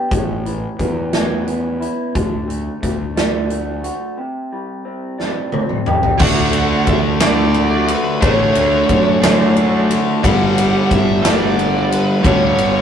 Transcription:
Already playing: clean electric guitar D3 B3 D4 G4
0.11 fingered electric bass A1, clean electric guitar A2, kick, closed hi-hat
0.45 clean electric guitar E3, closed hi-hat
0.79 fingered electric bass E2, clean electric guitar B3, kick, closed hi-hat
1.13 clean electric guitar C#4, snare, closed hi-hat
1.47 clean electric guitar B3, closed hi-hat
1.80 clean electric guitar E4, closed hi-hat
2.15 fingered electric bass D2, clean electric guitar D3, kick, closed hi-hat
2.48 clean electric guitar A3, closed hi-hat
2.82 fingered electric bass D2, clean electric guitar A3, kick, closed hi-hat
3.16 clean electric guitar D4, snare, closed hi-hat
3.50 clean electric guitar A3, closed hi-hat
3.84 clean electric guitar F#4, closed hi-hat
4.17 clean electric guitar C3
4.52 clean electric guitar G3
4.85 clean electric guitar C4
5.18 clean electric guitar D4, snare
5.52 clean electric guitar C4, high tom
5.69 mid tom
5.86 clean electric guitar G4, mid tom
6.03 floor tom
6.18 fingered electric bass D2, overdriven electric guitar D3 A3 D4, lead electric guitar F#5, kick, crash
6.53 ride
6.87 fingered electric bass D2, lead electric guitar E5, kick, ride
7.20 overdriven electric guitar D3 A3 D4, lead electric guitar D5, snare, ride
7.54 ride
7.88 lead electric guitar B4, ride
8.21 fingered electric bass A1, overdriven electric guitar D3 A3 D4, lead electric guitar C#5, kick, ride
8.55 fingered electric bass D2, ride
8.89 fingered electric bass F#2, kick, ride
9.22 overdriven electric guitar D3 A3 D4, snare, ride
9.56 ride
9.90 ride
10.23 fingered electric bass G1, overdriven electric guitar G2 D3 G3, lead electric guitar F#5, kick, ride
10.58 ride
10.91 fingered electric bass G1, lead electric guitar E5, kick, ride
11.22 overdriven electric guitar G2 D3 G3, lead electric guitar D5, snare, ride
11.59 ride
11.92 lead electric guitar B4, ride
12.21 fingered electric bass D2, overdriven electric guitar G2 D3 G3, kick
12.25 lead electric guitar C#5, ride
12.57 fingered electric bass G1, ride

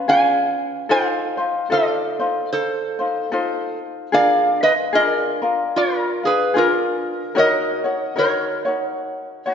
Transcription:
0.08 ukulele C#4 F4 G#4 B4, resonator guitar played with a steel bar F5 G#5
0.89 ukulele D#4 F4 A4 C5, resonator guitar played with a steel bar C5 F5
1.37 ukulele D#4 F4 C5
1.70 ukulele D#4 F4 A4 C5, resonator guitar played with a steel bar A4 D5
2.19 ukulele D#4 F4 C5
2.53 resonator guitar played with a steel bar A4 C5
2.99 ukulele D#4 F4 C5
3.32 ukulele D#4 F4 A4 C5
4.12 ukulele D4 F4 G#4 A#4, resonator guitar played with a steel bar D5 F5
4.63 ukulele F4, resonator guitar played with a steel bar B4 D#5
4.93 ukulele D4 F4 G#4 A#4, resonator guitar played with a steel bar A#4 D#5
5.06 resonator guitar played with a steel bar D5
5.42 ukulele D4 F4 A#4
5.76 resonator guitar played with a steel bar F4 A#4
6.23 ukulele D4 F4, resonator guitar played with a steel bar G#4 B4
6.54 ukulele D4 F4 G#4 A#4, resonator guitar played with a steel bar F4
6.58 resonator guitar played with a steel bar A#4
7.35 ukulele D#4 F#4 A#4 C#5, resonator guitar played with a steel bar A#4
7.39 resonator guitar played with a steel bar D#5
7.84 ukulele D#4 F#4 C#5
8.16 ukulele D#4 F#4 A#4 C#5, resonator guitar played with a steel bar A#4 C#5
8.65 ukulele D#4 F#4 C#5
9.46 ukulele D#4 F#4 C#5

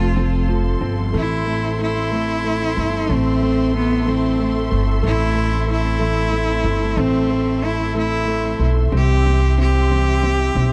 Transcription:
Already playing: upright bass F1, grand piano F3 C4, cello F4, string section A4 A5 C6
0.00 steel-string acoustic guitar F3 A3 C4 F4
0.15 steel-string acoustic guitar F2 C3 F3 A3 C4 F4, grand piano C4
0.47 steel-string acoustic guitar F3 A3 C4 F4, grand piano F3
0.64 steel-string acoustic guitar F3 A3 C4 F4
0.81 upright bass G1, grand piano C4
0.97 steel-string acoustic guitar F3 A3 C4 F4
1.13 upright bass A1, steel-string acoustic guitar A2 E3 A3 C4 E4, grand piano A3, cello E4, string section A4 E5
1.45 steel-string acoustic guitar E3 A3 C4, grand piano A3
1.62 steel-string acoustic guitar A3 C4 E4
1.79 grand piano A3, cello E4
1.95 steel-string acoustic guitar A3 C4 E4
2.11 steel-string acoustic guitar A2 E3 A3 C4 E4, grand piano A3
2.44 steel-string acoustic guitar E3 A3 C4 E4, grand piano A3
2.60 steel-string acoustic guitar A3 C4 E4
2.77 upright bass G1, grand piano A3
2.93 steel-string acoustic guitar A3 C4 E4
3.09 upright bass A1, steel-string acoustic guitar A2 E3 A3 C4 E4, grand piano A3, cello C4
3.41 steel-string acoustic guitar E3 A3 C4 E4, grand piano A3
3.57 steel-string acoustic guitar A3 C4 E4
3.74 grand piano A3, cello B3
3.89 steel-string acoustic guitar A3 C4 E4
4.06 steel-string acoustic guitar A2 E3 A3 C4 E4, grand piano A3, cello C4
4.39 steel-string acoustic guitar E3 A3 C4 E4, grand piano A3
4.54 steel-string acoustic guitar A3 C4 E4
4.71 upright bass G1, grand piano A3
4.86 steel-string acoustic guitar A3 C4 E4
5.03 upright bass A1, steel-string acoustic guitar A2 E3 A3 C4 E4, grand piano A3, cello E4
5.35 steel-string acoustic guitar E3 A3 C4 E4, grand piano A3
5.51 steel-string acoustic guitar A3 C4 E4
5.67 grand piano A3, cello E4
5.83 steel-string acoustic guitar A3 C4 E4
5.99 steel-string acoustic guitar A2 E3 A3 C4 E4, grand piano A3
6.31 steel-string acoustic guitar E3 A3 C4, grand piano A3
6.48 steel-string acoustic guitar A3 C4 E4
6.64 upright bass G1, grand piano A3
6.79 steel-string acoustic guitar A3 C4 E4
6.96 upright bass A1, steel-string acoustic guitar A2 E3 A3 C4 E4, grand piano A3
7.00 cello C4
7.28 steel-string acoustic guitar E3 A3 C4 E4, grand piano A3
7.46 steel-string acoustic guitar A3 C4
7.63 grand piano A3, cello E4
7.78 steel-string acoustic guitar A3 C4 E4
7.94 steel-string acoustic guitar A2 E3 A3 C4 E4, grand piano A3, cello E4
8.25 steel-string acoustic guitar E3 A3 C4 E4, grand piano A3
8.42 steel-string acoustic guitar A3 C4 E4
8.59 upright bass B1, grand piano A3
8.74 steel-string acoustic guitar A3 C4 E4
8.90 upright bass C2, steel-string acoustic guitar C3 E3 G3 C4 E4, grand piano C4, string section G4 C6
8.97 cello G4
9.24 steel-string acoustic guitar E3 G3 C4 E4, grand piano C4
9.40 steel-string acoustic guitar G3 C4 E4
9.58 grand piano C4, cello G4
9.73 steel-string acoustic guitar G3 C4 E4
9.89 steel-string acoustic guitar C3 E3 G3 C4 E4, grand piano C4
10.22 steel-string acoustic guitar E3 G3 C4, grand piano C4
10.38 steel-string acoustic guitar G3 C4 E4
10.55 upright bass B1, grand piano C4

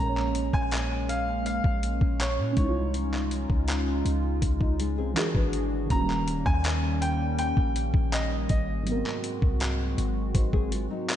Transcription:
Already playing: 808-style bass A#1, synth keys A#2 G#3, analog synth pad G#3 A#3 C#4
0.00 synth keys C#4 A#4, grand piano A#5
0.09 synth keys C#5
0.17 clap
0.35 closed hi-hat
0.53 808-style bass A#1, grand piano G#5, kick
0.71 clap, closed hi-hat
1.09 grand piano F5, closed hi-hat
1.46 grand piano F5, closed hi-hat
1.64 808-style bass A#1, kick
1.83 closed hi-hat
2.01 808-style bass A#1, kick
2.20 grand piano C#5, clap, closed hi-hat
2.38 808-style bass A#2
2.53 synth keys G#3 C#4
2.57 808-style bass C2, analog synth pad G#3 D#4 F4, grand piano C#5, kick, closed hi-hat
2.62 synth keys E4
2.69 synth keys F4
2.94 closed hi-hat
3.14 clap
3.31 closed hi-hat
3.50 808-style bass C#2, kick
3.68 clap, closed hi-hat
4.05 808-style bass C#2, closed hi-hat
4.42 808-style bass C#2, kick, closed hi-hat
4.61 nylon-string guitar D#4, kick
4.79 nylon-string guitar G#3 F4, closed hi-hat
4.98 808-style bass C2, nylon-string guitar C4 G#4
5.14 synth keys E3 D4 F#4, analog synth pad E3 D4 F#4 G#4, nylon-string guitar D4 A#4, clap, closed hi-hat
5.19 synth keys G#4
5.35 808-style bass G#1, nylon-string guitar D4 B4, kick
5.53 closed hi-hat
5.86 synth keys D#3 A#3
5.90 808-style bass D#1, analog synth pad D#3 G3 A#3 C#4, synth keys C#4, grand piano A#5, kick, closed hi-hat
5.95 synth keys F#4
6.02 synth keys G3
6.10 clap
6.28 closed hi-hat
6.46 808-style bass D#2, grand piano G#5, kick
6.64 clap, closed hi-hat
7.02 grand piano G5, closed hi-hat
7.39 grand piano G5, closed hi-hat
7.57 808-style bass A#1, kick
7.76 closed hi-hat
7.94 808-style bass A#1, kick
8.13 grand piano D#5, clap, closed hi-hat
8.49 808-style bass G#1, grand piano D#5, kick, closed hi-hat
8.82 synth keys G#2 F#3
8.87 analog synth pad G#3 C4 F#4, synth keys B3, closed hi-hat
8.92 synth keys C4 A#4
9.06 clap
9.24 closed hi-hat
9.42 808-style bass C2, kick
9.60 clap, closed hi-hat
9.98 808-style bass G#1, closed hi-hat
10.35 808-style bass G#1, nylon-string guitar D#4 C5, kick, closed hi-hat
10.53 nylon-string guitar C4 G#4, kick
10.72 nylon-string guitar G#3 F4, closed hi-hat
10.90 nylon-string guitar F#3 D#4
11.09 clap, closed hi-hat

